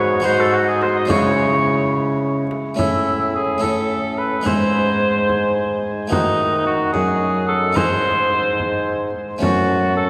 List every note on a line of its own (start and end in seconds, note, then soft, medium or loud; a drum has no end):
0.00 0.21 G#2 medium
0.00 0.25 G#2 medium
0.00 0.20 C#4 medium
0.00 0.20 D#4 medium
0.00 0.22 F#4 medium
0.00 0.24 F#4 medium
0.00 0.23 C#5 medium
0.00 0.25 C#5 medium
0.20 1.04 G#3 medium
0.20 1.05 D#4 medium
0.20 1.06 F#4 medium
0.20 0.38 C5 medium
0.24 1.05 G#2 medium
0.24 1.08 G#2 medium
0.24 1.11 F#4 medium
0.24 0.42 C5 loud
0.40 0.46 A4 medium
0.40 0.55 A4 medium
0.53 0.59 F#4 medium
0.53 0.68 F#4 medium
0.67 0.81 G#4 medium
0.67 0.84 G#4 medium
0.81 0.88 C5 medium
0.81 0.96 C5 medium
0.81 frame drum medium
0.96 1.09 D#5 medium
0.96 1.12 D#5 medium
1.05 2.47 C#3 medium
1.05 2.46 C#3 medium
1.05 2.73 G#3 soft
1.05 2.73 C#4 soft
1.05 2.74 E4 soft
1.10 2.50 E4 medium
1.10 1.93 C#5 medium
1.10 1.95 C#5 medium
1.10 frame drum medium
2.51 frame drum soft
2.74 4.41 A2 soft
2.74 4.41 A2 medium
2.74 3.57 A3 soft
2.74 3.58 C#4 soft
2.74 3.59 E4 soft
2.79 3.58 C#4 medium
2.79 3.31 E4 medium
2.79 3.59 E5 medium
2.79 frame drum medium
3.35 3.64 G#4 medium
3.58 4.41 A3 soft
3.58 4.41 C#4 soft
3.58 4.42 E4 soft
3.58 4.19 A4 medium
3.63 4.48 C#4 medium
3.63 4.47 E5 medium
3.63 frame drum soft
4.18 4.46 B4 medium
4.42 6.07 G#2 medium
4.42 6.07 G#2 soft
4.42 6.05 G#3 soft
4.42 6.05 D#4 soft
4.42 6.06 G#4 soft
4.42 6.11 G#5 medium
4.46 6.11 D#4 medium
4.46 5.81 C5 medium
4.46 frame drum medium
5.29 frame drum soft
6.08 6.92 D#3 medium
6.08 6.89 D#3 soft
6.08 7.71 A3 soft
6.08 7.71 D#4 soft
6.08 6.62 D#4 medium
6.08 7.72 F#4 soft
6.12 7.74 D#4 medium
6.12 7.74 F#5 medium
6.12 frame drum medium
6.66 6.92 F#4 medium
6.93 7.72 F#2 soft
6.93 7.75 F#2 medium
6.93 7.47 G#4 medium
6.93 frame drum soft
7.48 7.78 A4 medium
7.73 9.10 G#2 soft
7.73 9.36 G#3 soft
7.73 9.36 D#4 soft
7.73 9.11 D#4 medium
7.73 9.14 C5 loud
7.73 9.11 G#5 medium
7.73 frame drum medium
7.77 9.11 G#2 medium
8.60 frame drum soft
9.38 10.10 F#2 medium
9.38 10.10 A3 medium
9.38 10.10 C#4 soft
9.38 10.10 C#4 medium
9.38 10.10 F#4 soft
9.38 9.93 F#4 medium
9.42 10.10 F#2 medium
9.42 10.10 A5 medium
9.42 frame drum medium
9.97 10.10 A4 medium